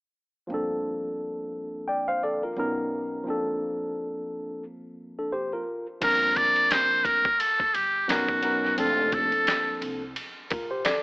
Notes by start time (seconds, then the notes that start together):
0.47 G1 F3 A#3 C4
0.52 D4 A4
1.88 D5 G5
2.08 C5 F5
2.23 A4 D5
2.43 F4 A#4
2.56 B1 F#3 B3 C#4 D#4 A#4
3.24 F3 A#3 C4
3.28 D4 A4
5.19 D4 A4
5.32 G4 C5
5.53 F4 A#4
6.01 G1 F3 A#3 C4 D4 A#4, kick, crash, ride
6.36 D5, kick, ride
6.56 ride
6.71 C5, snare, hi-hat pedal, ride
7.05 D2 A#4, kick, ride
7.25 kick
7.40 A4, ride
7.60 kick
7.74 G1 G4, ride
8.08 B1 F#3 B3 C#4 D#4 F#4 A#4, snare, hi-hat pedal, ride
8.29 kick
8.42 F#3 B3 C#4 D#4 A#4, ride
8.64 snare
8.76 F1 F3 A#3 C4 D4 F4 A4, ride
9.12 A4, kick, ride
9.32 ride
9.47 snare, hi-hat pedal, ride
9.81 C2, ride
10.16 ride
10.50 A#1 F4 A#4, kick, ride
10.71 G4 C5
10.85 A4 D5, snare, hi-hat pedal, ride